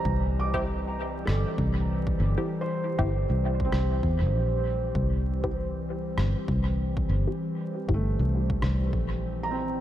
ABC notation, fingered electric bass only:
X:1
M:4/4
L:1/16
Q:"Swing 16ths" 1/4=98
K:Cmix
V:1 name="Fingered electric bass" clef=bass
C,,8 G,,, z C,,4 G,,, z | z3 G,,,2 C,,3 C,,2 E,, G,,, B,,,4 | C,,8 G,,, z C,,4 G,,, z | z3 G,,,2 C,,3 C,,2 B,,,6 |]